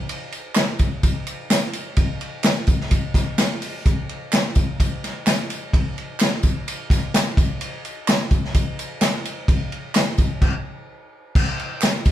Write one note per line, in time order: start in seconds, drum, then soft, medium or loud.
0.09 ride medium
0.09 tambourine soft
0.32 ride medium
0.32 tambourine soft
0.55 snare loud
0.55 clap medium
0.55 ride medium
0.55 tambourine medium
0.79 kick loud
0.79 ride medium
0.79 tambourine medium
1.03 kick loud
1.03 ride medium
1.03 tambourine medium
1.27 ride medium
1.27 tambourine medium
1.50 snare loud
1.50 clap medium
1.50 ride medium
1.50 tambourine loud
1.73 ride medium
1.73 tambourine medium
1.96 kick loud
1.96 ride medium
1.96 tambourine soft
2.21 ride medium
2.43 snare loud
2.43 clap medium
2.43 ride medium
2.43 tambourine medium
2.67 kick loud
2.67 ride medium
2.67 tambourine medium
2.81 snare soft
2.91 kick loud
2.91 ride medium
2.91 tambourine medium
3.14 kick loud
3.14 snare soft
3.14 ride medium
3.14 tambourine medium
3.38 snare loud
3.38 clap medium
3.38 ride medium
3.38 tambourine medium
3.62 open hi-hat medium
3.62 ride medium
3.62 tambourine medium
3.86 kick loud
3.86 hi-hat pedal medium
3.86 ride medium
3.86 tambourine soft
4.09 ride medium
4.32 snare loud
4.32 clap medium
4.32 ride medium
4.32 tambourine medium
4.55 kick loud
4.55 ride medium
4.55 tambourine medium
4.80 kick medium
4.80 ride medium
4.80 tambourine medium
5.04 snare soft
5.04 ride medium
5.04 tambourine medium
5.27 snare loud
5.27 clap medium
5.27 ride medium
5.27 tambourine medium
5.50 ride medium
5.50 tambourine soft
5.73 kick loud
5.73 ride medium
5.98 ride medium
6.20 snare loud
6.20 clap medium
6.20 ride medium
6.20 tambourine medium
6.43 kick loud
6.43 ride medium
6.43 tambourine medium
6.68 ride medium
6.68 tambourine medium
6.90 kick loud
6.90 snare soft
6.90 ride medium
6.90 tambourine medium
7.14 snare loud
7.14 clap loud
7.14 ride medium
7.14 tambourine loud
7.37 kick loud
7.37 ride medium
7.37 tambourine medium
7.61 ride medium
7.61 tambourine soft
7.85 ride medium
7.85 tambourine soft
8.07 snare loud
8.07 clap medium
8.07 ride medium
8.07 tambourine medium
8.31 kick loud
8.31 ride soft
8.31 tambourine soft
8.44 snare soft
8.54 kick medium
8.54 ride medium
8.54 tambourine medium
8.79 ride medium
8.79 tambourine medium
9.01 snare loud
9.01 clap medium
9.01 ride medium
9.01 tambourine medium
9.25 ride medium
9.25 tambourine medium
9.48 kick loud
9.48 ride medium
9.48 tambourine soft
9.72 ride medium
9.94 snare loud
9.94 clap medium
9.94 ride medium
9.94 tambourine medium
10.18 kick loud
10.18 ride medium
10.18 tambourine soft
10.42 kick loud
10.42 crash medium
11.35 kick loud
11.35 crash loud
11.35 tambourine soft
11.59 ride medium
11.81 snare loud
11.81 clap medium
11.81 ride medium
11.81 tambourine medium
12.05 kick loud
12.05 ride medium
12.05 tambourine soft